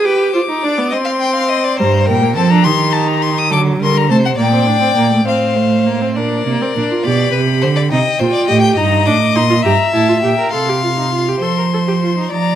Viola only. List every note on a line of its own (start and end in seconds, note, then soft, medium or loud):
0.05 0.34 G4 medium
0.34 0.40 F4 medium
0.49 0.65 D#4 medium
0.64 0.79 D4 medium
0.78 0.94 B3 medium
0.92 1.81 C4 medium
1.80 2.24 G3 medium
2.22 2.36 A#3 medium
2.36 2.50 C4 medium
2.51 2.67 D4 medium
2.66 3.52 D#4 medium
3.50 3.81 F#3 medium
3.79 4.08 G3 medium
4.09 4.17 A3 medium
4.38 4.51 A#3 medium
4.52 4.68 C4 medium
4.67 4.81 D4 medium
4.81 4.96 C4 medium
4.97 5.11 A#3 medium
5.12 5.26 A3 medium
5.26 5.58 C4 medium
5.56 5.87 A3 medium
5.86 6.03 A#3 medium
6.01 6.18 C4 medium
6.16 6.46 D4 medium
6.47 6.63 A#3 medium
6.61 6.76 C4 medium
6.77 6.92 D4 medium
6.91 7.08 F4 medium
7.06 7.90 G4 medium
7.91 7.99 D#4 medium
8.20 8.50 F4 medium
8.48 8.79 G4 medium
8.77 9.06 D#4 medium
9.06 9.14 D4 medium
9.36 9.41 D#4 medium
9.50 9.55 F4 medium
9.65 9.73 G4 medium
9.93 10.10 E4 medium
10.09 10.23 F4 medium
10.24 10.38 G4 medium
10.39 10.53 A#4 medium
10.54 10.71 A4 medium
10.69 10.83 G4 medium
10.84 10.89 F4 medium
10.98 11.12 D#4 medium
11.13 11.30 F4 medium
11.28 11.44 G4 medium
11.42 11.57 A4 medium
11.58 11.64 A#4 medium
11.73 11.79 A4 medium
11.87 11.93 G4 medium
12.02 12.17 F4 medium
12.18 12.32 D#4 medium